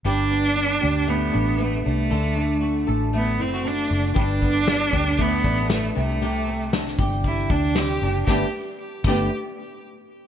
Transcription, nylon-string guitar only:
X:1
M:4/4
L:1/16
Q:"Swing 16ths" 1/4=117
K:G
V:1 name="Nylon-string guitar"
[G,,G]2 B,2 D2 G2 A,2 D2 B,2 D2 | [D,A]2 D2 F2 A2 A,2 E F D2 F2 | [G,,G]2 B,2 D2 G2 A,2 D2 B,2 C,2 | [C,G]2 C2 D2 G2 G,2 D2 C2 D2 |
[G,,D,A,B,DG]2 z4 [G,,D,A,B,DG]2 z8 |]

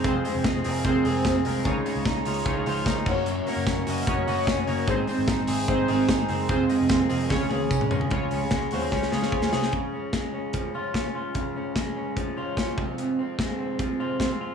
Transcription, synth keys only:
X:1
M:4/4
L:1/8
Q:1/4=148
K:Db
V:1 name="Synth keys"
[CFAc] [CFAc] [CFAe] [CFAB] [CFAc] [CFAc] [CFAc] [CFAB] | [EFAd] [EFAd] [EFAe] [EFAd] [EFAd] [EFAc] [EFAB] [DGBd]- | [DGBd] [DGBd] [DGBd] [DGBe] [DGBd] [DGBe] [DGBd] [DGBd] | [CEAc] [CEAc] [CEAc] [CEAc] [CEAc] [CEAB] [CEAc] [CEAc] |
[CFAc] [CFAe] [CFAB] [CFAe] [DFAd] [DFAd] [DFAd] [DFAd] | [FAd] [FAd] [FAd] [FAc] [FAd] [FAd] [FAd] [FAc] | z8 | z8 |
z8 |]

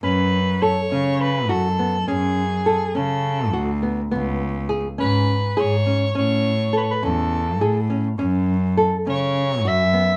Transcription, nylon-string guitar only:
X:1
M:7/8
L:1/8
Q:1/4=103
K:F#m
V:1 name="Nylon-string guitar"
C2 A C2 F B, | C2 A C2 F B, | B,2 G C2 G C | C2 A C2 G C |
C2 A C2 F B, |]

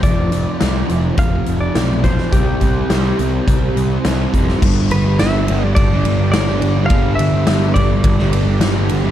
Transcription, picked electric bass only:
X:1
M:4/4
L:1/8
Q:1/4=105
K:Flyd
V:1 name="Picked electric bass" clef=bass
F,,,2 C,, F,,, F,,, F,,, B,,,2 | C,, C,, C,, C,, C,, C,, C,, F,,, | G,,, G,,, G,,, G,,, G,,, G,,, G,,, G,,, | G,,, G,,, G,,, G,,, G,,,2 G,,, G,,, |]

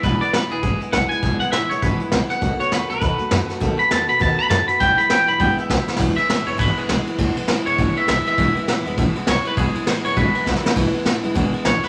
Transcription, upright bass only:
X:1
M:4/4
L:1/8
Q:"Swing" 1/4=201
K:E
V:1 name="Upright bass" clef=bass
E,,, z A,,, E,,, G,,, z B,,, z | E,,, z A,,, E,,, G,,, z B,,, z | B,,, z E,, B,,, D,, z F,, z | B,,, z E,, B,,, D,, z F,, z |
E,,, z A,,, E,,, G,,, z B,,, z | E,,, z A,,, E,,, G,,, z B,,, z | E,,, z A,,, E,,, G,,, z B,,, z | E,,, z A,,, E,,, G,,, z B,,, z |
E,,, z A,,, E,,, G,,, z B,,, z | E,,, z A,,, E,,, G,,, z ^A,,, z |]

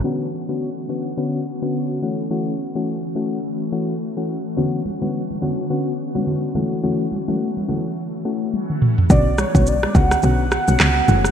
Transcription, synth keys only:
X:1
M:4/4
L:1/16
Q:"Swing 16ths" 1/4=106
K:Bm
V:1 name="Synth keys"
[D,B,CF]2 z [D,B,CF] z2 [D,B,CF]2 [D,B,CF]2 z [D,B,CF]3 [E,A,CF]2 | [E,A,CF]2 z [E,A,CF] z2 [E,A,CF]2 z2 [E,A,CF]2 z [E,A,CF] z2 | [D,B,CF]2 z [D,B,CF] z2 [D,B,CF]2 [D,B,CF]2 z [D,B,CF]3 [E,A,CF]2 | [E,A,CF]2 z [E,A,CF] z2 [E,A,CF]2 z2 [E,A,CF]2 z4 |
[D,B,CF]2 z [D,B,CF] z2 [D,B,CF]2 [D,B,CF]2 z [D,B,CF]3 [E,A,CF]2 |]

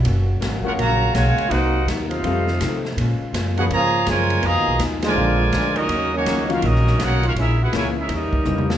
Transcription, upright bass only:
X:1
M:4/4
L:1/8
Q:"Swing" 1/4=164
K:Ebm
V:1 name="Upright bass" clef=bass
G,,,2 A,,, z B,,,2 C,, z | =C,,2 E,,2 F,,2 =C,2 | B,, z G,,2 A,,2 G,,2 | (3F,, E,, C,, E,,2 B,,,2 =D,,2 |
E,,2 D,,2 B,,,2 C,,2 | B,,,2 D,,2 E,, z _F,,2 |]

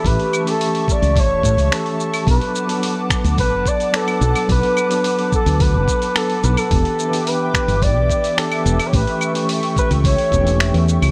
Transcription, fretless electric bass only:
X:1
M:4/4
L:1/16
Q:1/4=108
K:Bm
V:1 name="Fretless electric bass" clef=bass
A,,, z6 C,,2 E,,, A,, C,, z4 | B,,, z6 D,,2 F,,, z4 B,,, z | B,,, z6 D,,2 F,,, z4 B,,, z | E,,, z6 G,,,2 B,,, z4 E,,, z |
A,,, z6 C,,2 z E,,,3 E,,2 C,, |]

